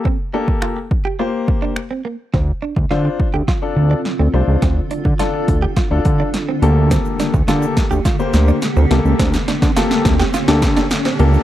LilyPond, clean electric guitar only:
\new Staff \with { instrumentName = "Clean electric guitar" } { \time 4/4 \key d \minor \tempo 4 = 105 c'16 r16 d'16 r16 f'16 r8 g'16 f'16 r8 d'16 r16 c'16 bes16 r16 | c'16 r16 d'16 r16 f'16 r8 g'16 f'16 r8 d'16 r16 c'16 a16 r16 | c'16 r16 d'16 r16 f'16 r8 g'16 f'16 r8 d'16 r16 c'16 bes16 r16 | c'16 r16 d'16 r16 f'16 r8 g'16 f'16 r8 d'16 r16 c'16 bes16 r16 |
c'16 r16 d'16 r16 f'16 r8 g'16 f'16 r8 d'16 r16 c'16 bes16 r16 | }